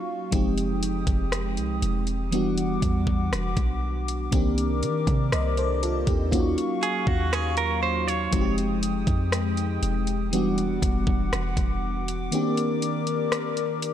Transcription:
0.00 0.31 F#3 medium
0.00 0.28 A#3 medium
0.00 0.29 C#4 medium
0.00 0.29 D#4 medium
0.00 0.28 F4 medium
0.00 0.30 F#4 medium
0.00 0.31 F5 medium
0.00 0.31 C#6 medium
0.31 1.05 F1 loud
0.31 2.28 F3 medium
0.31 2.28 G#3 medium
0.31 2.31 G#3 medium
0.31 2.29 C4 medium
0.31 2.29 D#4 medium
0.31 2.30 G4 medium
0.31 2.31 G5 medium
0.31 2.31 D#6 medium
0.31 kick loud
0.31 closed hi-hat medium
0.58 closed hi-hat medium
0.83 closed hi-hat medium
1.07 1.59 F1 loud
1.07 kick medium
1.07 closed hi-hat soft
1.32 cross-stick loud
1.32 closed hi-hat medium
1.57 1.81 C2 loud
1.57 closed hi-hat soft
1.82 2.78 E1 loud
1.82 closed hi-hat medium
2.07 closed hi-hat soft
2.31 4.28 E3 medium
2.31 4.28 G3 medium
2.31 4.31 G3 medium
2.31 4.29 B3 medium
2.31 4.29 D4 medium
2.31 4.30 F#4 medium
2.31 4.31 F#5 medium
2.31 4.30 D6 medium
2.31 closed hi-hat medium
2.58 closed hi-hat soft
2.82 3.30 E2 loud
2.82 kick medium
2.82 closed hi-hat medium
3.07 kick medium
3.32 3.56 E1 loud
3.32 cross-stick loud
3.32 closed hi-hat medium
3.57 4.29 B1 medium
3.57 kick medium
3.57 closed hi-hat soft
4.08 closed hi-hat medium
4.31 4.84 C2 loud
4.31 6.28 D#3 medium
4.31 6.28 A#3 medium
4.31 6.29 C4 medium
4.31 4.82 D4 medium
4.31 4.83 G4 medium
4.31 6.31 A#4 medium
4.31 6.31 D5 medium
4.31 6.31 D6 medium
4.31 kick loud
4.31 closed hi-hat medium
4.58 closed hi-hat medium
4.83 5.06 D#3 loud
4.83 closed hi-hat medium
5.07 5.31 C3 loud
5.07 kick medium
5.07 closed hi-hat soft
5.32 6.05 C2 loud
5.32 5.57 C5 medium
5.32 5.56 D#5 medium
5.32 cross-stick loud
5.32 closed hi-hat medium
5.57 5.82 A4 medium
5.57 5.82 C5 medium
5.57 closed hi-hat soft
5.83 6.07 F4 medium
5.83 6.07 A4 medium
5.83 closed hi-hat medium
6.07 6.55 D#2 loud
6.07 6.33 D#4 medium
6.07 6.55 G4 medium
6.07 kick medium
6.07 closed hi-hat soft
6.31 8.31 F#3 medium
6.31 8.28 A#3 medium
6.31 8.29 C#4 medium
6.31 8.29 D#4 medium
6.31 8.28 F4 medium
6.31 8.30 F#4 medium
6.31 8.31 F5 medium
6.31 8.31 C#6 medium
6.31 kick medium
6.31 closed hi-hat medium
6.58 closed hi-hat soft
6.83 7.08 G#4 medium
6.83 closed hi-hat medium
7.07 8.28 D#2 loud
7.07 7.33 F#4 medium
7.07 kick medium
7.33 7.56 G#4 medium
7.33 cross-stick loud
7.33 closed hi-hat medium
7.57 7.81 A#4 medium
7.57 closed hi-hat soft
7.83 8.08 C5 medium
8.08 8.55 C#5 medium
8.08 closed hi-hat medium
8.31 9.05 F1 loud
8.31 10.28 F3 medium
8.31 10.28 G#3 medium
8.31 10.31 G#3 medium
8.31 10.29 C4 medium
8.31 10.29 D#4 medium
8.31 8.40 F#4 medium
8.31 10.31 G5 medium
8.31 10.30 D#6 medium
8.31 kick loud
8.31 closed hi-hat medium
8.41 10.33 G4 medium
8.58 closed hi-hat medium
8.83 closed hi-hat medium
9.07 9.79 F2 loud
9.07 kick medium
9.07 closed hi-hat soft
9.32 cross-stick loud
9.32 closed hi-hat medium
9.57 closed hi-hat soft
9.83 10.79 E1 loud
9.83 closed hi-hat medium
10.07 closed hi-hat soft
10.31 12.28 E3 medium
10.31 12.28 G3 medium
10.31 12.31 G3 medium
10.31 12.29 B3 medium
10.31 12.29 D4 medium
10.31 12.30 F#4 medium
10.31 12.31 F#5 medium
10.31 13.93 D6 medium
10.31 closed hi-hat medium
10.58 closed hi-hat soft
10.82 11.06 E1 loud
10.82 kick loud
10.82 closed hi-hat medium
11.07 11.31 E1 loud
11.07 kick medium
11.32 11.56 E1 loud
11.32 cross-stick loud
11.32 closed hi-hat medium
11.57 12.29 E1 medium
11.57 kick medium
11.57 closed hi-hat soft
12.08 closed hi-hat medium
12.31 13.93 D#3 medium
12.31 13.93 A#3 medium
12.31 13.93 C4 medium
12.31 13.93 D4 medium
12.31 13.93 G4 medium
12.31 13.93 A#4 medium
12.31 13.93 D5 medium
12.31 closed hi-hat medium
12.57 closed hi-hat medium
12.82 closed hi-hat medium
13.07 closed hi-hat soft
13.32 cross-stick loud
13.32 closed hi-hat medium
13.57 closed hi-hat soft
13.82 closed hi-hat medium

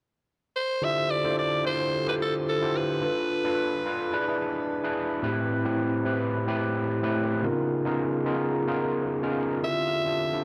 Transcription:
0.56 0.86 C5 medium
0.81 1.08 D3 medium
0.81 1.09 E4 medium
0.81 1.09 F4 medium
0.81 1.09 G4 medium
0.81 1.09 A4 medium
0.81 1.09 C5 medium
0.81 1.13 E5 loud
1.11 1.38 D5 medium
1.24 1.51 D3 medium
1.24 1.51 E4 medium
1.24 1.51 F4 medium
1.24 1.51 G4 medium
1.24 1.51 A4 medium
1.24 1.51 C5 medium
1.39 1.64 D5 medium
1.63 1.91 D3 medium
1.63 1.91 E4 medium
1.63 1.91 F4 medium
1.63 1.91 G4 medium
1.63 1.91 A4 medium
1.63 1.91 C5 medium
1.63 2.05 C5 loud
2.06 2.42 D3 medium
2.06 2.42 E4 medium
2.06 2.42 F4 medium
2.06 2.42 G4 medium
2.06 2.42 A4 medium
2.06 2.14 B4 medium
2.06 2.42 C5 medium
2.22 2.34 A4 medium
2.49 2.79 A4 medium
2.62 2.88 D3 medium
2.62 2.88 E4 medium
2.62 2.88 F4 medium
2.62 2.89 G4 medium
2.62 2.89 A4 medium
2.62 2.89 C5 medium
2.77 4.41 B4 medium
3.02 3.29 D4 medium
3.02 3.29 F4 medium
3.02 3.29 A4 medium
3.02 3.29 B4 medium
3.44 3.71 D4 medium
3.44 3.71 F4 medium
3.44 3.71 A4 medium
3.44 3.71 B4 medium
3.86 4.12 D4 medium
3.86 4.12 F4 medium
3.86 4.12 A4 medium
3.86 4.12 B4 medium
4.13 4.25 D4 medium
4.13 4.25 E4 medium
4.13 4.25 G#4 medium
4.13 4.25 B4 loud
4.28 4.62 D4 medium
4.28 4.63 E4 medium
4.28 4.63 G#4 medium
4.28 4.63 B4 medium
4.83 5.09 D4 medium
4.83 5.09 E4 medium
4.83 5.10 G#4 medium
4.83 5.10 B4 loud
5.22 5.49 A2 medium
5.22 5.49 C4 medium
5.22 5.49 E4 medium
5.22 5.50 G4 medium
5.22 5.50 B4 medium
5.65 5.91 A2 medium
5.65 5.91 C4 medium
5.65 5.92 E4 medium
5.65 5.92 G4 medium
5.65 5.92 B4 medium
6.05 6.32 A2 medium
6.05 6.32 C4 medium
6.05 6.32 E4 medium
6.05 6.32 G4 medium
6.05 6.32 B4 medium
6.47 6.82 A2 medium
6.47 6.82 C4 medium
6.47 6.82 E4 medium
6.47 6.82 G4 medium
6.47 6.83 B4 medium
7.02 7.29 A2 medium
7.02 7.29 C4 medium
7.02 7.29 E4 medium
7.02 7.29 G4 medium
7.02 7.29 B4 loud
7.42 7.69 C#3 medium
7.42 7.69 B3 medium
7.42 7.69 D#4 medium
7.42 7.70 F4 medium
7.42 7.70 G#4 medium
7.42 7.70 A#4 medium
7.85 8.11 C#3 medium
7.85 8.12 B3 medium
7.85 8.12 D#4 medium
7.85 8.12 F4 medium
7.85 8.12 G#4 medium
7.85 8.12 A#4 medium
8.25 8.52 C#3 medium
8.25 8.52 B3 medium
8.25 8.52 D#4 medium
8.25 8.52 F4 medium
8.25 8.52 G#4 medium
8.25 8.52 A#4 medium
8.67 9.02 C#3 medium
8.67 9.02 B3 medium
8.67 9.02 D#4 medium
8.67 9.03 F4 medium
8.67 9.03 G#4 medium
8.67 9.03 A#4 loud
9.22 9.49 C#3 medium
9.22 9.49 B3 medium
9.22 9.49 D#4 medium
9.22 9.49 F4 medium
9.22 9.49 G#4 medium
9.22 9.49 A#4 medium
9.62 9.89 D3 medium
9.62 9.89 C4 medium
9.62 9.89 E4 medium
9.62 9.90 F4 medium
9.62 9.90 G4 medium
9.62 9.90 A4 medium
9.62 10.42 E5 loud
10.05 10.22 D3 medium
10.05 10.22 C4 medium
10.05 10.22 E4 medium
10.05 10.22 F4 medium
10.05 10.22 G4 medium
10.05 10.22 A4 medium
10.33 10.44 D3 medium
10.33 10.44 C4 medium
10.33 10.44 E4 medium
10.33 10.44 F4 medium
10.33 10.44 G4 medium
10.33 10.44 A4 medium

